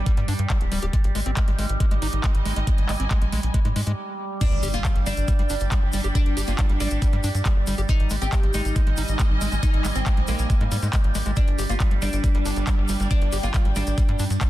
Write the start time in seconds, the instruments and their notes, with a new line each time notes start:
Already playing: string section G3 D4 D5 G5, synth drone G3
0.06 acid bass G3, kick, closed hi-hat
0.17 analog synth bass G2, acid bass G3, closed hi-hat
0.28 analog synth bass G2, acid bass D4, open hi-hat
0.39 analog synth bass G2, closed hi-hat
0.50 acid bass G3, kick, clap, closed hi-hat
0.61 analog synth bass D1, closed hi-hat
0.72 analog synth bass D1, acid bass G3, open hi-hat
0.82 analog synth bass D1, acid bass G4, closed hi-hat
0.93 acid bass G#3, kick, closed hi-hat
1.04 analog synth bass G#1, closed hi-hat
1.15 analog synth bass G#1, acid bass G#3, open hi-hat
1.22 string section D#4
1.26 analog synth bass G#1, acid bass C4, closed hi-hat
1.37 acid bass G#3, kick, clap, closed hi-hat
1.48 analog synth bass G#1, acid bass G#3, closed hi-hat
1.59 analog synth bass G#1, acid bass G#3, open hi-hat
1.69 analog synth bass G#1, closed hi-hat
1.79 acid bass G#3, string section D#5, kick, closed hi-hat
1.91 analog synth bass G#1, acid bass G#3, closed hi-hat
2.02 analog synth bass G#1, acid bass D#4, open hi-hat
2.13 analog synth bass G#1, closed hi-hat
2.24 acid bass G#3, kick, clap, closed hi-hat
2.35 analog synth bass G#1, string section G#5, closed hi-hat
2.46 analog synth bass G#1, acid bass G#3, open hi-hat
2.56 analog synth bass G#1, acid bass G#3, closed hi-hat
2.67 acid bass G#3, kick, closed hi-hat
2.78 analog synth bass G#1, closed hi-hat
2.89 analog synth bass G#1, acid bass G#3, clap, open hi-hat
3.00 analog synth bass G#1, acid bass C4, closed hi-hat
3.11 acid bass G#3, kick, clap, closed hi-hat
3.22 analog synth bass A#1, acid bass G#3, closed hi-hat
3.32 analog synth bass A#1, acid bass G#3, open hi-hat
3.43 analog synth bass A#1, closed hi-hat
3.54 acid bass G#3, kick, closed hi-hat
3.65 analog synth bass G#2, acid bass G#3, closed hi-hat
3.76 analog synth bass G#2, acid bass G#3, open hi-hat
3.87 analog synth bass G#2, acid bass G#3, closed hi-hat
4.41 acid bass G3, synth drone G3, string section G3, oud D4, kick, closed hi-hat, crash, impact, shaker
4.52 analog synth bass G1, closed hi-hat
4.58 string section D4
4.63 analog synth bass G1, acid bass G4, open hi-hat, shaker
4.73 analog synth bass G1, acid bass A#3, oud F4, closed hi-hat, shaker
4.81 acid bass G3, string section D5, kick, clap, closed hi-hat, shaker
4.91 string section G5
4.96 analog synth bass G1, acid bass G3, closed hi-hat
5.06 analog synth bass G1, acid bass G3, oud D4, open hi-hat, shaker
5.17 analog synth bass G1, closed hi-hat, shaker
5.28 acid bass G3, kick, closed hi-hat, shaker
5.39 analog synth bass G1, acid bass G3, closed hi-hat
5.50 analog synth bass G1, acid bass D4, open hi-hat, shaker
5.60 analog synth bass G1, closed hi-hat, shaker
5.71 acid bass G3, kick, clap, closed hi-hat, shaker
5.83 analog synth bass G1
5.93 analog synth bass G1, acid bass G3, open hi-hat, shaker
6.04 analog synth bass G1, acid bass G4, closed hi-hat, shaker
6.15 acid bass G3, oud D4, kick, closed hi-hat, shaker
6.26 analog synth bass G1, closed hi-hat
6.37 analog synth bass G1, acid bass G4, open hi-hat, shaker
6.47 analog synth bass G1, acid bass A#3, oud F4, closed hi-hat, shaker
6.59 acid bass G3, kick, clap, closed hi-hat, shaker
6.69 analog synth bass G#1, acid bass G3, closed hi-hat
6.80 analog synth bass G#1, acid bass G3, oud D4, open hi-hat, shaker
6.91 analog synth bass G#1, closed hi-hat, shaker
7.02 acid bass G3, kick, closed hi-hat, shaker
7.13 analog synth bass G2, acid bass G3, closed hi-hat
7.24 analog synth bass G2, acid bass D4, open hi-hat, shaker
7.35 analog synth bass G2, closed hi-hat, shaker
7.45 acid bass G3, kick, clap, closed hi-hat, shaker
7.56 analog synth bass G1
7.67 analog synth bass G1, acid bass G3, open hi-hat, shaker
7.78 analog synth bass G1, acid bass G4, closed hi-hat, shaker
7.89 acid bass G#3, oud D#4, kick, closed hi-hat, shaker
7.94 string section D#4
8.00 analog synth bass G#1, closed hi-hat
8.10 analog synth bass G#1, acid bass G#3, open hi-hat, shaker
8.22 analog synth bass G#1, acid bass C4, oud G4, closed hi-hat, shaker
8.30 acid bass G#3, string section D#5, kick, clap, closed hi-hat, shaker
8.43 analog synth bass G#1, acid bass G#3, closed hi-hat
8.54 analog synth bass G#1, acid bass G#3, oud D#4, open hi-hat, shaker
8.65 analog synth bass G#1, closed hi-hat, shaker
8.70 string section G#5
8.76 acid bass G#3, kick, closed hi-hat, shaker
8.87 analog synth bass G#1, acid bass G#3, closed hi-hat
8.97 analog synth bass G#1, acid bass D#4, open hi-hat, shaker
9.08 analog synth bass G#1, closed hi-hat, shaker
9.19 acid bass G#3, kick, clap, closed hi-hat, shaker
9.30 analog synth bass G#1
9.41 analog synth bass G#1, acid bass G#3, open hi-hat, shaker
9.52 analog synth bass G#1, acid bass G#3, closed hi-hat, shaker
9.63 acid bass G#3, oud D#4, kick, closed hi-hat, shaker
9.74 analog synth bass G#1, closed hi-hat
9.85 analog synth bass G#1, acid bass G#3, clap, open hi-hat, shaker
9.95 analog synth bass G#1, acid bass C4, oud C4, closed hi-hat, shaker
10.06 acid bass G#3, kick, clap, closed hi-hat, shaker
10.17 analog synth bass A#1, acid bass G#3, closed hi-hat
10.28 analog synth bass A#1, acid bass G#3, oud A#3, open hi-hat, shaker
10.39 analog synth bass A#1, closed hi-hat, shaker
10.50 acid bass G#3, kick, closed hi-hat, shaker
10.61 analog synth bass G#2, acid bass G#3, closed hi-hat
10.72 analog synth bass G#2, acid bass G3, open hi-hat, shaker
10.82 analog synth bass G#2, acid bass G#3, closed hi-hat, shaker
10.93 acid bass G#3, kick, clap, closed hi-hat, shaker
11.04 analog synth bass G#1, closed hi-hat
11.15 analog synth bass G#1, acid bass G#3, open hi-hat, shaker
11.25 analog synth bass G#1, acid bass G#3, closed hi-hat, shaker
11.36 string section G3, acid bass G3, oud D4, kick, closed hi-hat, shaker
11.48 analog synth bass G1, closed hi-hat
11.59 analog synth bass G1, acid bass G4, open hi-hat, shaker
11.69 analog synth bass G1, acid bass A#3, string section D4 D5, oud F4, closed hi-hat, shaker
11.80 acid bass G3, kick, clap, closed hi-hat, shaker
11.91 analog synth bass G1, acid bass G3, closed hi-hat
12.02 analog synth bass G1, acid bass G3, oud D4, open hi-hat, shaker
12.13 analog synth bass G1, closed hi-hat, shaker
12.24 acid bass G3, kick, closed hi-hat, shaker
12.35 analog synth bass G1, acid bass G3, closed hi-hat
12.41 string section G5
12.45 analog synth bass G1, acid bass D4, open hi-hat, shaker
12.56 analog synth bass G1, closed hi-hat, shaker
12.67 acid bass G3, kick, clap, closed hi-hat, shaker
12.78 analog synth bass G1
12.89 analog synth bass G1, acid bass G3, open hi-hat, shaker
13.00 analog synth bass G1, acid bass G3, closed hi-hat, shaker
13.10 acid bass G3, oud D4, kick, closed hi-hat, shaker
13.22 analog synth bass G1, closed hi-hat
13.32 analog synth bass G1, acid bass G4, open hi-hat, shaker
13.43 analog synth bass G1, acid bass A#3, oud F4, closed hi-hat, shaker
13.54 acid bass G3, kick, clap, closed hi-hat, shaker
13.65 analog synth bass G#1, acid bass G3, closed hi-hat
13.76 analog synth bass G#1, acid bass G3, oud D4, open hi-hat, shaker
13.87 analog synth bass G#1, closed hi-hat, shaker
13.98 acid bass G3, kick, closed hi-hat, shaker
14.09 analog synth bass G2, acid bass G3, closed hi-hat
14.19 analog synth bass G2, acid bass D4, open hi-hat, shaker
14.30 analog synth bass G2, closed hi-hat, shaker
14.41 acid bass G3, kick, clap, closed hi-hat, shaker